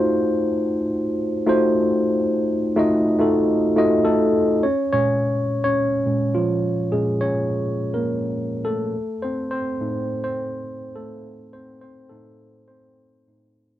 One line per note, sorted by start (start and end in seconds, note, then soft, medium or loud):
0.00 0.78 A3 medium
0.00 0.78 D#4 medium
0.00 0.78 F4 medium
0.00 0.79 F#4 medium
0.00 0.79 C5 loud
1.46 2.50 A3 medium
1.46 2.50 D#4 medium
1.46 2.51 F4 medium
1.46 2.51 F#4 medium
1.46 2.52 C5 loud
2.76 3.15 A3 medium
2.76 3.15 D#4 medium
2.76 3.15 F4 medium
2.76 3.16 F#4 medium
2.76 3.16 D#5 loud
3.19 3.71 A3 medium
3.19 3.71 D#4 medium
3.19 3.72 F4 medium
3.19 3.72 F#4 medium
3.19 3.72 A4 medium
3.76 4.05 A3 medium
3.76 4.54 D#4 medium
3.76 4.55 F4 medium
3.76 4.55 F#4 medium
3.76 4.55 D#5 loud
4.05 4.59 A3 medium
4.05 4.65 A4 loud
4.63 4.91 C#4 medium
4.63 4.90 C#5 medium
4.92 6.05 A#2 medium
4.92 6.05 G#3 soft
4.92 5.62 C#4 medium
4.92 5.63 C#5 loud
5.64 6.06 C#4 medium
5.64 6.18 C#5 loud
6.06 6.33 A#2 soft
6.06 6.33 G#3 soft
6.06 6.33 C#4 medium
6.35 6.90 F3 medium
6.35 6.95 F4 medium
6.92 8.90 A#2 medium
6.92 7.20 G#3 medium
6.92 7.22 C#4 medium
6.92 7.22 G#4 medium
7.21 7.92 C#4 medium
7.21 7.91 C#5 medium
7.94 8.49 A#3 medium
7.94 8.48 A#4 medium
8.65 9.20 A3 medium
8.65 9.19 A4 loud
9.23 9.51 C4 medium
9.23 9.50 C5 loud
9.51 10.22 C4 medium
9.51 10.23 C5 medium
9.81 12.07 A2 medium
9.81 10.96 A3 medium
9.81 12.08 D#4 medium
10.24 10.80 C4 medium
10.24 10.78 C5 medium
10.96 11.51 A3 medium
10.96 11.55 A4 medium
11.53 11.82 C4 medium
11.53 11.80 C5 medium
11.81 12.10 C4 medium
11.81 12.12 C5 medium
12.09 12.93 A2 medium
12.09 12.65 A3 medium
12.09 12.94 D#4 medium
12.09 12.64 A4 medium
12.68 13.52 C4 medium
12.68 13.51 C5 medium
13.27 13.53 A2 soft
13.27 13.53 A3 soft
13.27 13.54 D#4 medium